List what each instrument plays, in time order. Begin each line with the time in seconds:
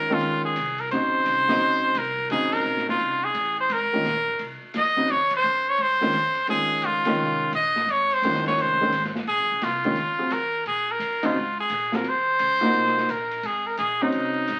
Already playing: upright bass F#2, trumpet A#4
0.10 upright piano D#3 G#3 C#4 F4, trumpet F4
0.21 upright bass F2, ride
0.44 trumpet G#4, kick
0.56 upright bass C2, hi-hat pedal, ride
0.78 trumpet A#4, ride
0.91 upright bass D#2, upright piano C#3 F#3 C4 D#4, trumpet C5, ride
1.26 upright bass C2, hi-hat pedal, ride
1.48 upright piano C#3 F#3 C4 D#4, snare, ride
1.60 upright bass C#2, ride
1.95 upright bass C2, trumpet A#4, hi-hat pedal, ride
2.18 kick
2.30 upright bass G#1, upright piano C#3 F#3 C4 D#4, trumpet G#4, ride
2.52 trumpet A#4, kick, ride
2.65 upright bass A#1, hi-hat pedal
2.77 snare
2.89 trumpet F4, snare
3.00 upright bass C2, ride
3.24 trumpet G#4
3.34 upright bass A1, hi-hat pedal, ride
3.60 trumpet C5
3.69 upright bass G#1, trumpet A#4, ride
3.93 upright piano D#3 G#3 C#4 F4
4.04 upright bass A#1, snare, hi-hat pedal, ride
4.27 kick
4.39 upright bass C2, ride
4.62 muted upright bass stroke
4.74 upright bass F2, trumpet D#5, snare, hi-hat pedal, ride
4.96 upright piano C#3 F#3 C4 D#4, kick
5.08 upright bass D#2, trumpet C#5, ride
5.30 kick, ride
5.36 trumpet C5
5.43 upright bass F#2, hi-hat pedal
5.69 trumpet C#5
5.77 upright bass G#2, ride
5.82 trumpet C5
6.01 upright piano D#3 G#3 C#4 F4, snare
6.13 upright bass F2, hi-hat pedal, ride
6.35 ride
6.47 upright bass D#2, upright piano D#3 G#3 C#4 F4, trumpet G#4, ride
6.82 upright bass C#2, trumpet F4, hi-hat pedal, ride
7.05 upright piano D#3 G#3 C#4 F4, snare, ride
7.18 upright bass C2
7.52 upright bass A#1, trumpet D#5, hi-hat pedal, ride
7.76 snare
7.87 upright bass G#1, ride
7.91 trumpet C#5
8.11 trumpet C5, ride
8.22 upright bass F#1, upright piano D#3 G#3 C#4 F4, hi-hat pedal, ride
8.35 snare
8.46 trumpet C#5, snare, ride
8.57 upright bass F1, trumpet C5, ride
8.81 upright piano D#3 G#3 C#4 G#4
8.92 upright bass G#1, hi-hat pedal, ride
9.04 snare
9.15 snare
9.27 upright bass A#1, trumpet G#4, ride
9.39 upright bass G#1
9.51 upright bass D#1
9.61 upright bass C2, trumpet F4, snare, hi-hat pedal, ride
9.84 upright piano D#3 G#3 C#4 F4, kick, ride
9.96 upright bass C#2, ride
10.19 upright piano F#3 C4 F4 G#4
10.30 upright bass D#2, trumpet A#4, hi-hat pedal, ride
10.66 upright bass A#2, trumpet G#4, ride
10.92 trumpet A#4
10.99 upright bass F#2, hi-hat pedal, ride
11.23 upright piano C#3 F#3 C4 D#4, trumpet F4, ride
11.35 upright bass G#2
11.60 trumpet G#4
11.69 upright bass A#2, hi-hat pedal, ride
11.92 upright piano F#3 C4 F4 G#4, trumpet A#4, snare
12.04 upright bass D#2, ride
12.08 trumpet C5
12.39 upright bass C#2, hi-hat pedal, ride
12.61 upright piano A#3 D#4 F4 F#4, ride
12.73 upright bass C2, ride
12.86 snare
12.97 snare
13.09 upright bass A#1, trumpet A#4, hi-hat pedal, ride
13.31 ride
13.43 upright bass G#1, trumpet G#4, ride
13.67 trumpet A#4
13.77 upright bass A#1, trumpet G#4, hi-hat pedal, ride
14.02 upright piano F#3 C4 C#4 D#4, trumpet D#4
14.12 upright bass C2, ride
14.48 upright bass G#1, hi-hat pedal, ride